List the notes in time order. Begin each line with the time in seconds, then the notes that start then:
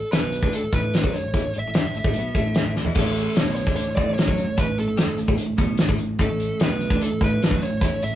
Already playing: A4
0.12 B1 B2 B4, snare, closed hi-hat
0.33 closed hi-hat
0.43 D2 D3, kick
0.53 A4, closed hi-hat
0.63 A1 A2
0.73 A1 A2 B4, kick, closed hi-hat
0.94 A1 A2, snare, closed hi-hat
1.04 F#2 F#3, kick
1.13 C#5, closed hi-hat
1.24 A1 A2
1.34 E2 E3, kick, closed hi-hat
1.47 A1 A2
1.54 A1 A2, closed hi-hat
1.59 E5
1.66 A1 A2
1.74 G2 G3 E5, snare, closed hi-hat
1.86 A1 A2
1.94 A1 A2, closed hi-hat
2.04 A1 A2, kick
2.14 B1, closed hi-hat
2.18 B2
2.34 A1 A2, kick, closed hi-hat
2.55 snare, closed hi-hat
2.76 D2 D3, snare
2.85 E2 E3, floor tom
2.95 A1 A2 E3 A3, kick, crash
2.99 C#4 E4 A4
3.07 A1 A2
3.16 closed hi-hat
3.36 B1 B2 C#5, snare, closed hi-hat
3.55 C#5, closed hi-hat
3.67 D2 D3, kick
3.76 C#5, closed hi-hat
3.89 A1 A2
3.96 A1 A2 D5, kick, closed hi-hat
4.14 C#5, closed hi-hat
4.19 A1 A2, snare
4.28 F#2 F#3, kick
4.38 closed hi-hat
4.49 A1 A2
4.58 E2 A2 E3 A3 C#4 B4, kick, closed hi-hat
4.63 E4
4.69 A1 A2
4.78 A1 A2 A4, closed hi-hat
4.88 A1 A2
4.97 G2 G3, snare, closed hi-hat
5.09 A1 A2
5.18 A1 A2, closed hi-hat
5.28 A1 A2, kick
5.37 muted clean electric guitar stroke, closed hi-hat
5.42 muted fingered electric bass stroke
5.46 A2
5.52 A1
5.58 B1 B2, kick, closed hi-hat
5.78 A1 A2, snare, closed hi-hat
5.89 A1 A2, kick
5.98 A1 A2, closed hi-hat
6.19 A1 A2 E3 A3 C#4 A4, kick, closed hi-hat
6.23 E4
6.30 A1 A2
6.40 closed hi-hat
6.60 B1 B2 B4, snare, closed hi-hat
6.80 closed hi-hat
6.90 D2 D3, kick
7.01 A4, closed hi-hat
7.12 A1 A2
7.21 A1 A2 B4, kick, closed hi-hat
7.41 A1 A2, snare, closed hi-hat
7.51 F#2 F#3, kick
7.62 C#5, closed hi-hat
7.72 A1 A2
7.81 E2 A2 E3 A3 C#4 E4, kick, closed hi-hat
7.92 A1 A2
8.02 A1 A2 E5, closed hi-hat